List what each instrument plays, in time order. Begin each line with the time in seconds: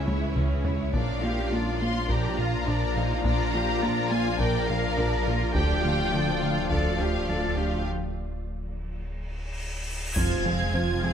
Already playing: double bass section C#2, sub bass C#2, french horn section E3 C#4, synth drone G#3 C#4 E4 C#5, cello section E4, violin section E5
0.07 analog synth bass C#2, viola section G#3 E4, synth arpeggio sound C#4, violin section E4 C#5, taiko high
0.36 double bass section C#2, analog synth bass C#2, synth arpeggio sound E3, viola section E3 C#4, violin section C#4 G#4, taiko mid
0.65 analog synth bass C#2, viola section G#3 E4, synth arpeggio sound C#4, violin section E4 C#5, taiko low
0.92 double bass section A#1, sub bass A#1, analog synth bass A#2, french horn section F3 D4, synth drone F3 A#3 F4 D5, viola section F3 D4, synth arpeggio sound A#3, cello section D4, violin section A#4 D5 F5, taiko
1.22 analog synth bass A#3, viola section A#3 F4, synth arpeggio sound F4, violin section F4 F5, cello section G4
1.51 double bass section A#1, viola section F3 D4, analog synth bass A#3, synth arpeggio sound F4, cello section F4, violin section A#4 D5
1.80 analog synth bass A#3, viola section A#3 F4, violin section F4 F5 C6
2.08 double bass section A#1, analog synth bass A#2, viola section F3 D4, synth arpeggio sound A#3, cello section G4, violin section A#4 D5 A#5, taiko
2.38 analog synth bass A#2, viola section A#3 F4, cello section F4, violin section F4 F5, synth arpeggio sound A#4
2.67 double bass section A#1, analog synth bass A#2, viola section F3 D4, cello section D4, synth arpeggio sound D4, violin section A#4 D5
2.96 analog synth bass A#2, viola section A#3 F4, cello section D#4, violin section F4 F5, synth arpeggio sound A#4
3.24 double bass section A#1, analog synth bass A#2, viola section F3 D4, synth arpeggio sound A#3, cello section F4, violin section A#4 D5 A#5, taiko
3.54 viola section A#3 F4, analog synth bass A#3, violin section F4 F5, synth arpeggio sound F4, cello section G4
3.82 double bass section A#1, viola section F3 D4, analog synth bass A#3, cello section F4, synth arpeggio sound F4, violin section A#4 D5
4.10 analog synth bass A#3, viola section A#3 F4, violin section F4 F5 G#5
4.39 double bass section A#1, analog synth bass A#2, viola section F3 D4, synth arpeggio sound A#3, violin section A#4 D5 G5, cello section A#4, taiko
4.69 analog synth bass A#2, viola section A#3 F4, violin section F4 F5, synth arpeggio sound A#4
4.97 double bass section A#1, analog synth bass A#2, viola section F3 D4, synth arpeggio sound D4, violin section A#4 D5
5.26 analog synth bass A#2, viola section A#3 F4, violin section F4 F5, synth arpeggio sound A#4
5.54 sub bass D1, double bass section D2, analog synth bass D2, synth arpeggio sound D3, viola section F3 D4, french horn section F3 D4, synth drone F3 A3 F4 D5, cello section G4, violin section A4 D5 G5, taiko
5.83 analog synth bass D3, synth arpeggio sound A3, viola section A3 F4, violin section F4 F5
6.12 double bass section D2, analog synth bass D3, viola section F3 D4, synth arpeggio sound A3, cello section F4, violin section A4 D5
6.41 analog synth bass D3, viola section A3 F4, violin section F4 F5
6.69 double bass section D2, analog synth bass D2, synth arpeggio sound D3, viola section F3 D4, violin section A4 D5 F5, cello section A4, taiko
6.99 analog synth bass D2, viola section A3 F4, synth arpeggio sound D4, violin section F4 F5, cello section G4
7.28 double bass section D2, analog synth bass D2, synth arpeggio sound F3, viola section F3 D4, violin section A4 D5, cello section A4
7.56 analog synth bass D2, viola section A3 F4, synth arpeggio sound D4, violin section F4 F5, cello section G4
7.86 cymbal swell
10.16 sub bass F1, double bass section F1, analog synth bass F2, cello section F2, french horn section F3 C4, synth arpeggio sound F3, synth drone F3 G#3 F4 C5, viola section F3 F4, violin section F4 C5 G#6, taiko, impact
10.45 analog synth bass F3, viola section G#3 C4, synth arpeggio sound C4, violin section G#4 F5
10.73 analog synth bass F3, viola section F3 F4, synth arpeggio sound C4, violin section F4 C5
11.03 analog synth bass F3, viola section G#3 C4, violin section G#4 F5